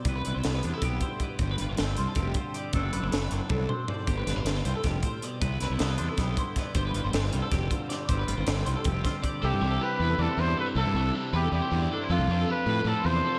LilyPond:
<<
  \new Staff \with { instrumentName = "Clean electric guitar" } { \time 7/8 \key c \major \tempo 4 = 157 c''16 b'16 b'16 c''16 a'16 b'16 c''16 a'16 g'8 c''8 d''8 | c''16 b'16 b'16 c''16 a'16 b'16 c''16 a'16 g'8 c''8 d''8 | c''16 b'16 b'16 c''16 a'16 b'16 c''16 b'16 a'8 c''8 d''8 | c''16 b'16 b'16 c''16 a'16 b'16 c''16 a'16 g'8 c''8 d''8 |
c''16 b'16 b'16 c''16 a'16 b'16 c''16 a'16 g'8 c''8 d''8 | c''16 b'16 b'16 c''16 a'16 b'16 c''16 a'16 g'8 c''8 d''8 | c''16 b'16 b'16 c''16 a'16 b'16 c''16 a'16 g'8 c''8 d''8 | a'8 c''16 a'16 g'8 b'16 a'16 d''16 c''8 d''16 a'16 c''16 |
a'8 c''16 a'16 g'8 b'16 a'16 d''16 c''8 d''16 a'16 c''16 | a'8 c''16 a'16 g'8 b'16 a'16 d''16 c''8 d''16 a'16 c''16 | }
  \new Staff \with { instrumentName = "Trumpet" } { \time 7/8 \key c \major r2. r8 | r2. r8 | r2. r8 | r2. r8 |
r2. r8 | r2. r8 | r2. r8 | g'4 b'4 a'8 c''8 b'8 |
a'4 r8 g'8 g'4 r8 | f'4 b'4 a'8 c''4 | }
  \new Staff \with { instrumentName = "Clean electric guitar" } { \time 7/8 \key c \major << { b'8 e'8 b8 d'16 e'16 b8 e'8 b'8 | g'8 f'8 c'8 f'8 c'8 f'8 g'8 | <fis c' d' a'>8 d'8 c'8 d'8 c'8 d'8 c''8 | g'8 d'16 f'16 c'8 f'2 |
b'8 e'8 b8 d'16 e'16 b8 e'8 b'8 | g'8 f'8 c'8 f'8 c'8 f'8 g'8 | g'8 f'8 c'8 f'8 c'8 f'8 g'8 | <d' e'>8 d'4. e'4 a'8 |
<d' e'>8 d'4. e'4 d'16 e'16 | d'8 d'4. f'4 a'8 | } \\ { c4. g4 g,4 | g,4. g4 d4 | fis,4. fis4 fis,4 | g,4. g8 g,8 a,8 b,8 |
c4. g4 g,4 | g,4. g4 d4 | g,4. g4 d4 | c4 g4. g,4 |
c4 g4. g,4 | f,4 f4. c4 | } >> }
  \new Staff \with { instrumentName = "Overdriven electric guitar" } { \time 7/8 \key c \major r2. r8 | r2. r8 | r2. r8 | r2. r8 |
r2. r8 | r2. r8 | r2. r8 | <c e g c' e'>8 <g c' e'>8 <c e g c' e'>8 <g c' e'>8 <e g c' e'>8 <c e g c' e'>8 <e g c' e'>8 |
<c e g c' e'>8 <g c' e'>8 <c e g c' e'>8 <g c' e'>8 <e g c' e'>8 <c e g c' e'>8 <e g c' e'>8 | <f a c' f'>8 <a c' f'>8 <f a c' f'>8 <a c' f'>8 <f a c' f'>8 <f a c' f'>8 <f a c' f'>8 | }
  \new Staff \with { instrumentName = "Fingered electric bass" } { \clef bass \time 7/8 \key c \major c,8 c,16 c,16 c,8 e,16 r16 b,,8 r4 | g,,8 g,,16 g,,16 g,,8 c,16 r16 f,,8 r4 | fis,,8 fis,,16 fis,,16 fis,,8 fis,,16 r16 c,8 r4 | g,,8 g,,16 g,,16 g,,8 c,16 r16 f,,8 r4 |
c,8 c,16 c,16 c,8 e,16 r16 b,,8 r4 | g,,8 g,,16 g,,16 g,,8 c,16 r16 f,,8 r4 | g,,8 g,,16 g,,16 g,,8 c,16 r16 f,,8 r4 | c,16 g,16 c,8 r8 e,8 e,16 r16 e,8 r8 |
c,16 g,16 c,8 r8 e,8 e,16 r16 e,8 r8 | f,16 c,16 f,8 r8 a,8 a,16 r16 e,8 r8 | }
  \new DrumStaff \with { instrumentName = "Drums" } \drummode { \time 7/8 <hh bd>8 hh8 <hh sn>8 hh8 <hh bd>8 <hh bd>8 <hh bd>8 | <hh bd>8 hh8 <hh sn>8 hh8 <hh bd>8 <hh bd>8 hh8 | <hh bd>8 hh8 <hh sn>8 hh8 <bd tommh>8 toml8 tomfh8 | <hh bd>8 <hh sn>8 <hh sn>8 hh8 <hh bd sn>8 <hh bd>8 hh8 |
<hh bd>8 <hh sn>8 <hh sn>8 hh8 <hh bd sn>8 <hh bd>8 <hh bd sn>8 | <hh bd>8 hh8 <hh sn>8 hh8 <hh bd sn>8 <hh bd>8 <hh sn>8 | <hh bd>8 hh8 <hh sn>8 hh8 <hh bd>8 <hh bd sn>8 <hh bd>8 | r4 r4 r4. |
r4 r4 r4. | r4 r4 r4. | }
>>